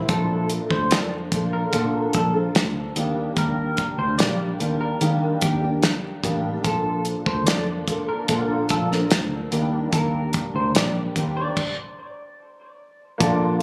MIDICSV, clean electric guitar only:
0, 0, Header, 1, 2, 480
1, 0, Start_track
1, 0, Tempo, 819672
1, 51, Time_signature, 4, 2, 24, 8
1, 7979, End_track
2, 0, Start_track
2, 0, Title_t, "Clean electric guitar"
2, 0, Program_c, 0, 27
2, 58, Note_on_c, 0, 69, 85
2, 283, Note_off_c, 0, 69, 0
2, 417, Note_on_c, 0, 72, 62
2, 537, Note_off_c, 0, 72, 0
2, 537, Note_on_c, 0, 74, 71
2, 648, Note_off_c, 0, 74, 0
2, 897, Note_on_c, 0, 70, 68
2, 1122, Note_off_c, 0, 70, 0
2, 1258, Note_on_c, 0, 69, 66
2, 1368, Note_off_c, 0, 69, 0
2, 1980, Note_on_c, 0, 70, 85
2, 2203, Note_off_c, 0, 70, 0
2, 2335, Note_on_c, 0, 72, 62
2, 2447, Note_off_c, 0, 72, 0
2, 2449, Note_on_c, 0, 74, 75
2, 2564, Note_off_c, 0, 74, 0
2, 2815, Note_on_c, 0, 70, 71
2, 3041, Note_off_c, 0, 70, 0
2, 3177, Note_on_c, 0, 67, 57
2, 3288, Note_off_c, 0, 67, 0
2, 3896, Note_on_c, 0, 69, 87
2, 4122, Note_off_c, 0, 69, 0
2, 4258, Note_on_c, 0, 72, 67
2, 4369, Note_off_c, 0, 72, 0
2, 4372, Note_on_c, 0, 74, 76
2, 4486, Note_off_c, 0, 74, 0
2, 4735, Note_on_c, 0, 70, 70
2, 4962, Note_off_c, 0, 70, 0
2, 5098, Note_on_c, 0, 69, 63
2, 5210, Note_off_c, 0, 69, 0
2, 5815, Note_on_c, 0, 70, 85
2, 6042, Note_off_c, 0, 70, 0
2, 6182, Note_on_c, 0, 72, 63
2, 6292, Note_off_c, 0, 72, 0
2, 6301, Note_on_c, 0, 74, 72
2, 6411, Note_off_c, 0, 74, 0
2, 6657, Note_on_c, 0, 74, 76
2, 6883, Note_off_c, 0, 74, 0
2, 7979, End_track
0, 0, End_of_file